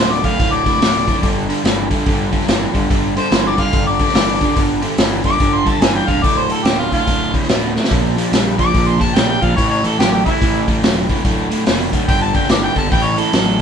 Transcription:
Already playing: D1 D2 C5
0.00 B2
0.12 D5
0.24 D2 A2 F5, kick, open hi-hat
0.40 D1 D2 A2, kick, open hi-hat
0.52 D5
0.65 D2 A2, kick, open hi-hat
0.81 D1 D2 B2, snare, open hi-hat
1.07 D2 A2, kick, open hi-hat
1.22 G1 G2 D3, kick, open hi-hat
1.49 G2 D3, open hi-hat
1.64 G1 G2 E3, snare, open hi-hat
1.90 G2 D3, kick, open hi-hat
2.06 G1 G2 D3, kick, open hi-hat
2.32 G2 D3, kick, open hi-hat
2.41 snare
2.48 G1 G2 E3, snare, open hi-hat
2.74 G1 G2 D3, kick, open hi-hat
2.90 G1 G2 D3, kick, open hi-hat
3.17 G2 D3 C5, open hi-hat
3.31 G1 G2 E3, snare, open hi-hat
3.47 D5
3.57 G2 D3 F5, kick, open hi-hat
3.72 G1 G2 D3, kick, open hi-hat
3.87 D5
3.99 G2 D3, kick, open hi-hat
4.08 snare
4.14 G1 G2 E3, snare, open hi-hat
4.41 G2 D3, kick, open hi-hat
4.56 G1 G2 D3, kick, open hi-hat
4.82 G2 D3, open hi-hat
4.98 G1 G2 E3, snare, open hi-hat
5.24 G2 D3 D6, kick, open hi-hat
5.39 G1 G2 D3, kick, open hi-hat
5.54 C6
5.65 G2 D3 A5, kick, open hi-hat
5.81 G1 G2 E3 G#5, snare, open hi-hat
5.95 G5
6.07 E1 G2 D3 F5, kick, open hi-hat
6.23 D1 D2 A2 D5, kick, open hi-hat
6.38 C5
6.49 D2 A2 A4, open hi-hat
6.64 D1 D2 B2 G4, snare, open hi-hat
6.79 F4
6.91 D2 A2 F4, kick, open hi-hat
7.07 D1 D2 A2, kick, open hi-hat
7.33 D2 A2, kick, open hi-hat
7.43 snare
7.49 D1 D2 B2, snare, open hi-hat
7.75 D2 A2, snare
7.84 snare
7.91 A#1 A#2 F3, kick, open hi-hat
8.16 A#2 F3, open hi-hat
8.32 A#1 A#2 G3, snare, open hi-hat
8.58 A#2 F3 D6, kick, open hi-hat
8.74 A#1 A#2 F3, kick, open hi-hat
8.87 C6
8.99 A#2 F3 A5, kick, open hi-hat
9.15 A#1 A#2 G3 G5, snare, open hi-hat
9.29 G5
9.41 A#1 A#2 F3 F5, kick, open hi-hat
9.56 A1 A2 E3 C#5, kick, open hi-hat
9.70 C#5
9.83 A2 E3 A4, open hi-hat
9.99 A1 A2 F#3 G4, snare, open hi-hat
10.12 G4
10.25 A2 E3 E4, kick, open hi-hat
10.41 A1 A2 E3, kick, open hi-hat
10.67 A2 E3, kick, open hi-hat
10.83 E1 A2 F#3, snare, open hi-hat
11.09 A2 E3, kick, open hi-hat
11.24 D1 D2 A2, kick, open hi-hat
11.50 D2 A2, open hi-hat
11.66 F1 D2 B2, snare, open hi-hat
11.92 D2 A2, kick, open hi-hat
12.08 G1 G2 D3 G5, kick, open hi-hat
12.22 A5
12.33 G2 D3 G5, kick, open hi-hat
12.43 snare
12.49 G1 G2 E3 D5, snare, open hi-hat
12.63 G5
12.75 G1 G2 D3 A5, kick, open hi-hat
12.90 A1 A2 E3 G5, kick, open hi-hat
13.04 C#5
13.18 A2 E3 A4, open hi-hat
13.33 A1 A2 F#3, snare, open hi-hat

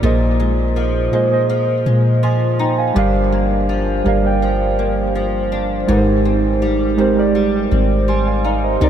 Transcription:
Already playing: G3 A#3
0.01 A#1 A#2 A#3 D#4 G#4 C5 D#5
0.40 G#3
0.76 F3
1.11 A#2 G#3 A#3 G#4 C5 D#5
1.30 A#2 A#3 G#4 C5 D#5
1.50 F3
1.86 A#2 G#3
2.23 F3 G#5 C6
2.59 D#4 G5 A#5
2.78 F5 G#5
2.94 G1 G2 G3 D4 G4 A#4 D5 F5
3.32 A#3
3.69 F3
4.04 G1 G3 A#3 G4 A#4 D5
4.08 F5
4.22 G3 G4 A#4 D5 G5
4.42 F3
4.79 A#3
5.15 F3
5.52 D4
5.87 G#1 G#2 G#3 D#4 G4 A#4 B4
5.97 C5
6.25 C4
6.62 G3
6.97 G#3 C4 D#4 G4 A#4 C5
7.15 G#3 D#4 G4 A#4 D5
7.35 G3
7.71 G#1 C4
8.08 G3 G#5 C6
8.27 F5 G#5
8.44 D#4 D5 F5
8.63 C5 D#5
8.80 C2 C3 C4 D#4 A#4 D5

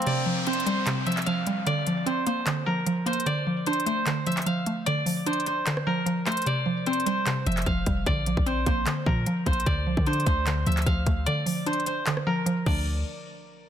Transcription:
Already playing: A#3 C4 D4 F4
0.02 closed hi-hat
0.06 C3 D5, closed hi-hat, downlifter
0.26 F3
0.47 C4 C5, closed hi-hat
0.53 closed hi-hat
0.60 closed hi-hat
0.66 G3 C5, closed hi-hat
0.86 C3, clap, closed hi-hat
1.06 F3 E5, closed hi-hat
1.12 closed hi-hat
1.17 clap, closed hi-hat
1.22 closed hi-hat
1.26 F3 F5, closed hi-hat
1.47 G3, closed hi-hat
1.66 D3 D5, closed hi-hat
1.87 F3, closed hi-hat
2.06 C4 C5, closed hi-hat
2.27 A#3 C5, closed hi-hat
2.46 D3, clap, closed hi-hat
2.66 F3 A#4
2.86 F3, closed hi-hat
3.06 A#3 C5, closed hi-hat
3.13 closed hi-hat
3.20 closed hi-hat
3.26 D3 D5, closed hi-hat
3.47 F3
3.66 D4 C5, closed hi-hat
3.73 closed hi-hat
3.80 closed hi-hat
3.86 A3 C5, closed hi-hat
4.06 D3, clap, closed hi-hat
4.26 F3 E5, closed hi-hat
4.32 closed hi-hat
4.37 clap, closed hi-hat
4.42 closed hi-hat
4.46 F3 F5, closed hi-hat
4.66 A3, closed hi-hat
4.86 D3 D5, closed hi-hat
5.06 F3, open hi-hat
5.26 D4 C5, closed hi-hat
5.33 closed hi-hat
5.40 closed hi-hat
5.46 C5, closed hi-hat
5.66 D3, clap, closed hi-hat
5.77 cross-stick
5.87 F3 A#4
6.06 F3, closed hi-hat
6.26 A3 C5, clap, closed hi-hat
6.32 closed hi-hat
6.37 closed hi-hat
6.42 closed hi-hat
6.46 C3 D5, closed hi-hat
6.66 F3
6.86 C4 C5, closed hi-hat
6.93 closed hi-hat
7.00 closed hi-hat
7.06 G3 C5, closed hi-hat
7.26 C3, clap, closed hi-hat
7.46 F1 F3 E5, closed hi-hat
7.52 closed hi-hat
7.57 clap, closed hi-hat
7.62 closed hi-hat
7.66 F1 F3 F5, kick, closed hi-hat
7.86 F1 G3, kick, closed hi-hat
8.06 A#1 D3 D5, kick, closed hi-hat
8.26 F3, closed hi-hat
8.37 A#1, kick
8.46 C4 C5, closed hi-hat
8.66 A#1 A#3 C5, kick, closed hi-hat
8.86 D3, clap, closed hi-hat
9.06 A#2 F3 A#4, kick
9.26 F3, closed hi-hat
9.46 A#1 A#3 C5, kick, closed hi-hat
9.53 closed hi-hat
9.60 closed hi-hat
9.66 D2 D3 D5, kick, closed hi-hat
9.87 C2 F3
9.97 D3, kick
10.06 D4 C5, closed hi-hat
10.13 closed hi-hat
10.20 closed hi-hat
10.26 D2 A3 C5, kick, closed hi-hat
10.46 D3, clap, closed hi-hat
10.66 D2 F3 E5, closed hi-hat
10.72 closed hi-hat
10.77 clap, closed hi-hat
10.82 closed hi-hat
10.86 D2 F3 F5, kick, closed hi-hat
11.06 D2 A3, kick, closed hi-hat
11.26 D3 D5, closed hi-hat
11.46 F3, open hi-hat
11.66 D4 C5, closed hi-hat
11.73 closed hi-hat
11.80 closed hi-hat
11.86 C5, closed hi-hat
12.06 D3, clap, closed hi-hat
12.17 cross-stick
12.27 F3 A#4
12.46 F3, closed hi-hat
12.66 D2 D3 F3 A3 D4 D5, kick, crash

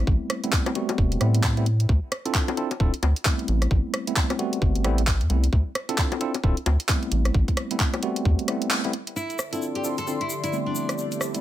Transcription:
Already playing: G3 A3 B3 C4 E4
0.07 A1, kick
0.30 cross-stick, closed hi-hat
0.44 G3 A3 B3 C4 E4, closed hi-hat
0.53 kick, clap
0.66 cross-stick, closed hi-hat, high bongo
0.75 G3 A3 B3 C4 F#4, closed hi-hat
0.89 closed hi-hat, high bongo
0.98 E1, kick
1.12 closed hi-hat
1.21 A2 G3 A3 B3 C4 E4, cross-stick, closed hi-hat
1.35 closed hi-hat
1.44 kick, clap
1.57 G3 A3 B3 C4 E4, closed hi-hat
1.66 closed hi-hat
1.80 closed hi-hat
1.89 D2, kick
2.12 cross-stick, closed hi-hat
2.26 C4 D4 E4 F4 A4, closed hi-hat
2.35 kick, clap
2.48 closed hi-hat, high bongo
2.57 C4 D4 E4 F4 A4, closed hi-hat
2.71 closed hi-hat, high bongo
2.80 D1 C4 D4 E4 F4 A4, kick
2.94 closed hi-hat
3.03 D2, closed hi-hat, high bongo
3.16 closed hi-hat
3.25 G3 A3 B3 C4 E4, kick, clap
3.39 closed hi-hat
3.48 A1, closed hi-hat
3.62 cross-stick, closed hi-hat
3.71 A1, kick
3.94 cross-stick, closed hi-hat
4.07 G3 A3 B3 C4 E4, closed hi-hat
4.16 kick, clap
4.30 cross-stick, closed hi-hat, high bongo
4.39 G3 A3 B3 C4 F#4, closed hi-hat
4.53 closed hi-hat
4.62 G1, kick
4.75 closed hi-hat
4.84 A1 G3 A3 B3 C4 E4, cross-stick, closed hi-hat
4.98 closed hi-hat
5.07 kick, clap
5.21 E2, closed hi-hat
5.30 C2 G3 A3 B3 C4 E4, closed hi-hat
5.44 closed hi-hat
5.53 D2, kick
5.75 cross-stick, closed hi-hat
5.89 C4 D4 E4 F4 A4, closed hi-hat
5.98 kick, clap
6.12 closed hi-hat, high bongo
6.21 C4 D4 E4 F4 A4, closed hi-hat
6.34 closed hi-hat, high bongo
6.44 D1 C4 D4 E4 F4 A4, kick
6.57 closed hi-hat
6.66 D2, closed hi-hat, high bongo
6.80 closed hi-hat
6.89 G3 A3 B3 C4 E4, kick, clap
7.03 closed hi-hat
7.12 A1, closed hi-hat
7.25 cross-stick, closed hi-hat
7.34 A1, kick
7.48 kick, closed hi-hat
7.57 cross-stick, closed hi-hat
7.71 G3 A3 B3 C4 E4, closed hi-hat
7.80 kick, clap
7.94 cross-stick, closed hi-hat, high bongo
8.03 G3 A3 B3 C4 F#4, closed hi-hat
8.16 closed hi-hat
8.25 E2, kick
8.39 closed hi-hat
8.48 G3 A3 B3 C4 E4, cross-stick, closed hi-hat
8.62 closed hi-hat
8.71 clap
8.84 G3 A3 B3 C4 E4, closed hi-hat
8.93 closed hi-hat
9.07 closed hi-hat
9.16 D3 F3 E4 A4 E5, shaker
9.30 closed hi-hat, shaker
9.39 cross-stick, shaker
9.44 D5
9.53 C4 D4 E4 F4 A4, closed hi-hat, shaker
9.59 C6, shaker
9.75 G4, closed hi-hat
9.84 C4 D4 E4 F4 A4, shaker
9.98 A4, closed hi-hat, shaker
10.07 C4 D4 E4 F4 A4, shaker
10.21 E4, closed hi-hat
10.30 shaker
10.44 E4, closed hi-hat, shaker
10.53 G3 A3 B3 C4 E4, shaker
10.66 D4
10.75 G3 A3 B4 E5, shaker
10.89 cross-stick, closed hi-hat, shaker
10.98 shaker
11.12 B5, closed hi-hat, shaker
11.21 cross-stick, shaker
11.34 G3 A3 B3 C4 E4, closed hi-hat, shaker

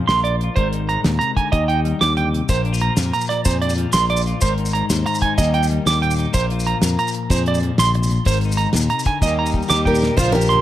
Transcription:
Already playing: A#2 F3 D4 F4
0.07 A#1 A#4 C6, snare, closed hi-hat
0.24 D5, closed hi-hat
0.41 F4, closed hi-hat
0.56 G#1 G#2 A#4 C5, kick, closed hi-hat
0.73 D#4, closed hi-hat
0.89 G#3 A#5, closed hi-hat
1.04 D#2 A#2, snare, closed hi-hat
1.19 C3 A#5, closed hi-hat
1.36 D3 G#5, kick, closed hi-hat
1.52 D#2 D#3 G4 D#5, kick, closed hi-hat
1.68 D#4 G5, closed hi-hat
1.85 G3, closed hi-hat
2.00 D#2 D#3 D6, snare, closed hi-hat
2.17 D3 G5, closed hi-hat
2.33 C3, closed hi-hat
2.49 A#1 A#2 A#4 C5, kick, closed hi-hat, maracas
2.65 D4, closed hi-hat
2.72 F4, maracas
2.81 F3 A#5, closed hi-hat
2.97 F2 A#4, snare, closed hi-hat, maracas
3.13 A#2 A#5, closed hi-hat, maracas
3.21 maracas
3.29 D5, snare, closed hi-hat
3.45 F2 A#2 G#4 C5, kick, closed hi-hat, maracas
3.62 D4 D5, closed hi-hat
3.69 F4, maracas
3.78 F3, closed hi-hat
3.93 A#1 A#4 C6, snare, closed hi-hat, maracas
4.01 maracas
4.10 A#2 D5, closed hi-hat
4.17 maracas
4.27 F4, closed hi-hat
4.40 G#1 G#2 A#4 C5, kick, closed hi-hat, maracas
4.58 D#4, closed hi-hat
4.65 maracas
4.73 G#3 A#5, closed hi-hat
4.90 D#2 C5, snare, closed hi-hat, maracas
5.06 D#3 A#5, closed hi-hat, maracas
5.14 maracas
5.22 D#4 G#5, kick, closed hi-hat
5.38 D#2 D#3 G3 A#3 D#4 D#5, kick, closed hi-hat, maracas
5.42 G4
5.54 D#4 G5, closed hi-hat
5.63 maracas
5.70 G3, closed hi-hat
5.86 D#2 G4 D6, snare, closed hi-hat, maracas
5.95 maracas
6.02 A#2 G5, closed hi-hat
6.11 maracas
6.18 D#4, closed hi-hat, maracas
6.32 A#1 A#2 A#4 C5, kick, closed hi-hat, maracas
6.50 F4, closed hi-hat
6.60 maracas
6.66 F3 A#5, closed hi-hat
6.82 F2 A#4, snare, closed hi-hat, maracas
6.97 A#2 A#5, closed hi-hat, maracas
7.08 maracas
7.14 closed hi-hat
7.30 F2 A#2 G#4 C5, kick, closed hi-hat, maracas
7.46 D5, closed hi-hat
7.54 maracas
7.63 F3, closed hi-hat
7.78 A#1 D3 C6, snare, closed hi-hat, maracas
7.88 maracas
7.94 C3, muted clean electric guitar stroke, closed hi-hat
8.03 maracas
8.10 A#2, closed hi-hat, maracas
8.25 G#1 G#2 A#4 C5, kick, closed hi-hat, maracas
8.36 maracas
8.41 closed hi-hat, maracas
8.45 D#4
8.52 maracas
8.57 A#5, muted clean electric guitar stroke, closed hi-hat, maracas
8.73 D#2 A#2, snare, closed hi-hat, maracas
8.90 C3 A#5, closed hi-hat
8.99 maracas
9.05 D3 G#5, kick, snare, closed hi-hat
9.22 D#2 D#3 G3 D#5, kick, maracas
9.26 A#3 D#4 G4
9.39 D#4 A#5
9.46 maracas
9.54 G3, kick, maracas
9.62 maracas
9.68 D#2 D#3 D#4 G4 D6, snare, maracas
9.74 G4
9.85 G3 G4 A#4 G5, kick
9.89 A#2
9.95 maracas
10.02 snare, maracas
10.07 D#4
10.16 A#1 F3 F4 C5, kick, crash, high conga, maracas
10.20 A#2 F3 D4 A#4, muted clean electric guitar stroke
10.32 F3 G4 A#4, closed hi-hat, low conga, maracas
10.37 F3
10.41 maracas
10.49 C6, snare, closed hi-hat, low conga
10.54 D4, high conga

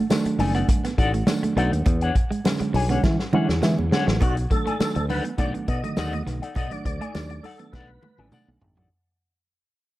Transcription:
0.10 D#3 F#3 A3 D4, muted clean electric guitar stroke, snare, tambourine, high conga
0.25 A3, muted clean electric guitar stroke, muted fingered electric bass stroke, closed hi-hat
0.39 F#1 D#4 A4 D5 G#5, muted clean electric guitar stroke, open hi-hat, low conga
0.55 B3 D#4 A4 D5 F#5, closed hi-hat
0.69 muted clean electric guitar stroke, kick, closed hi-hat, muted conga, low conga
0.84 B3, muted clean electric guitar stroke, snare, closed hi-hat
0.98 A1 D#4 A4 D5 F#5, muted clean electric guitar stroke, kick, closed hi-hat
1.13 A3, muted clean electric guitar stroke, closed hi-hat
1.27 D#3 F#3 A3 D4, muted clean electric guitar stroke, snare, tambourine, high conga
1.43 A3, muted clean electric guitar stroke, closed hi-hat, high conga
1.56 B1 B3 D#4 A4 D5 F#5, closed hi-hat
1.72 D#2, muted clean electric guitar stroke, closed hi-hat
1.86 E2 B3, muted clean electric guitar stroke, kick, closed hi-hat, muted conga
2.01 D4 G#4 C#5 F#5, closed hi-hat
2.15 muted clean electric guitar stroke, kick, closed hi-hat
2.31 G#3, muted fingered electric bass stroke, muted clean electric guitar stroke, closed hi-hat
2.44 D3 F#3 G#3 C#4, muted clean electric guitar stroke, snare, tambourine, high conga
2.60 G#3, muted fingered electric bass stroke, muted clean electric guitar stroke, closed hi-hat
2.73 B1 D4 G#4 C#5 G#5, muted clean electric guitar stroke, open hi-hat, low conga
2.89 D3 F#3 G#3 B3 C#4 D4 G#4 C#5 F#5, closed hi-hat
3.03 E3, kick, snare, muted conga, low conga
3.19 muted clean electric guitar stroke, snare
3.33 D3 E3 F#3 G#3 C#4 D4 G#4 C#5 F#5, muted conga, low conga
3.49 E2, muted clean electric guitar stroke, snare
3.62 D3 E3 F#3 G#3 E4, muted clean electric guitar stroke, snare, tambourine, high conga
3.78 E2, muted clean electric guitar stroke, high conga
3.91 D3 F#3 G#3 C#4 D4 G#4 C#5 F#5, muted clean electric guitar stroke, snare
4.07 A1 F#3, muted clean electric guitar stroke, snare
4.21 B1 B3 D#4 F#4 A4 D5 F#5, kick, closed hi-hat, muted conga
4.37 muted clean electric guitar stroke, closed hi-hat
4.50 D#3 F#3 A3 D4 A4, muted clean electric guitar stroke, kick, closed hi-hat
4.66 A3 D#4 A4 D5 G#5, muted fingered electric bass stroke, closed hi-hat
4.79 D#3 F#3 A3 D4, muted fingered electric bass stroke, snare, tambourine, high conga
4.95 D2 A3, muted clean electric guitar stroke, closed hi-hat
5.09 D#3 F#3 A3 D4 D#4 A4 B4 D5 F#5, muted clean electric guitar stroke, open hi-hat, low conga
5.25 B3, muted clean electric guitar stroke, closed hi-hat
5.38 B1 D#3 F#3 A3 D4 D#4 A4 D5 F#5, kick, closed hi-hat, muted conga
5.54 B3, muted clean electric guitar stroke, closed hi-hat
5.68 B2 D#4 A4 D5 D#5 F#5, muted clean electric guitar stroke, kick, closed hi-hat, muted conga
5.83 D3 D#3 F#3 A3, closed hi-hat
5.97 D#2 D#4 A4 D5 F#5, muted clean electric guitar stroke, snare, tambourine, high conga
6.13 A3, closed hi-hat, high conga
6.27 B1 B3, muted clean electric guitar stroke, snare, closed hi-hat
6.42 D#4 A4 D5 F#5, closed hi-hat
6.55 B1 B3 D#4 A4 D5 D#5 F#5, kick, closed hi-hat, muted conga
6.71 D#3 F#3 A3 D4 D5, muted clean electric guitar stroke, closed hi-hat
6.85 D2 D5, muted clean electric guitar stroke, kick, closed hi-hat
7.01 A3 D#4 A4 D5 G#5, closed hi-hat
7.14 D#2 D#3 F#3 A3 D4, snare, tambourine, high conga
7.30 A3, muted clean electric guitar stroke, closed hi-hat
7.43 D#4 A4 D5 F#5, muted clean electric guitar stroke, open hi-hat, low conga
7.59 D#3 F#3 A3 B3 D4, muted clean electric guitar stroke, closed hi-hat
7.72 B1 D#4 A4 B4 D5 F#5, kick, snare, muted conga, low conga
8.03 A3, muted clean electric guitar stroke, high tom, muted conga, low conga
8.18 A1 D#3 F#3 A3 B3 D#4 A4 D5 G#5, high tom
8.25 D4
8.32 A3 D#4 A4 D5 F#5, mid tom, tambourine, high conga
8.48 B1, high conga
8.61 G#1, muted clean electric guitar stroke, floor tom
8.77 A1 F#3 D#4 A4 D5 F#5, floor tom

